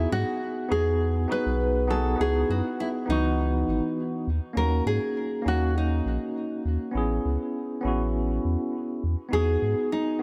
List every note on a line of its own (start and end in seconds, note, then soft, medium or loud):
0.00 0.65 B3 medium
0.00 0.66 D#4 medium
0.00 0.12 E4 medium
0.00 0.67 F#4 medium
0.00 0.68 G#4 medium
0.11 0.24 G#2 loud
0.11 0.71 F#4 loud
0.69 1.26 E2 medium
0.69 1.26 B3 medium
0.69 1.26 D#4 medium
0.69 1.27 F#4 medium
0.69 1.27 G#4 medium
0.69 1.86 G#4 loud
1.28 1.85 B3 medium
1.28 1.85 D#4 medium
1.28 1.86 F#4 medium
1.28 1.86 B4 medium
1.28 1.86 B4 loud
1.46 2.15 B1 loud
1.87 2.15 B3 medium
1.87 2.15 D#4 medium
1.87 2.16 F#4 medium
1.87 2.16 G#4 medium
1.87 2.20 A4 medium
2.16 2.44 C#2 loud
2.16 3.03 B3 medium
2.16 3.04 D#4 medium
2.20 3.05 E4 medium
2.20 3.06 F#4 medium
2.20 2.50 G#4 loud
2.49 2.62 F#2 medium
2.49 2.77 F#4 medium
2.80 2.88 E4 medium
3.06 3.64 C#2 medium
3.06 4.26 E3 medium
3.06 4.24 B3 medium
3.06 4.25 D#4 medium
3.10 4.24 D#4 medium
3.10 4.27 F#4 medium
3.68 3.80 G#1 medium
4.27 4.40 D#2 loud
4.53 4.81 D#2 loud
4.53 5.41 A#3 medium
4.53 5.41 C#4 medium
4.53 5.42 D#4 medium
4.53 4.86 A#4 loud
4.59 5.43 F#4 medium
4.86 4.99 G#2 loud
4.86 5.42 G#4 loud
5.42 6.01 D#2 medium
5.42 6.89 A#3 medium
5.42 6.90 C#4 medium
5.42 6.91 D#4 medium
5.48 5.74 F#4 loud
5.48 6.92 F#4 medium
5.78 6.62 D#4 medium
6.05 6.18 A#1 medium
6.65 6.77 D#2 medium
6.91 7.19 A1 loud
6.91 7.78 B3 medium
6.91 7.79 C#4 medium
6.91 7.80 E4 medium
6.97 7.81 G#4 medium
7.25 7.37 C#2 loud
7.81 8.39 A1 medium
7.81 8.99 B3 medium
7.81 9.00 C#4 medium
7.85 9.01 E4 medium
7.85 9.02 F#4 medium
8.44 8.56 E2 medium
9.03 9.15 E2 loud
9.29 9.57 E2 loud
9.29 10.16 B3 medium
9.29 10.17 D#4 medium
9.29 10.18 F#4 medium
9.33 9.88 G#4 loud
9.33 10.19 G#4 loud
9.62 9.74 G#2 medium
9.92 10.22 D#4 medium
10.19 10.22 B3 medium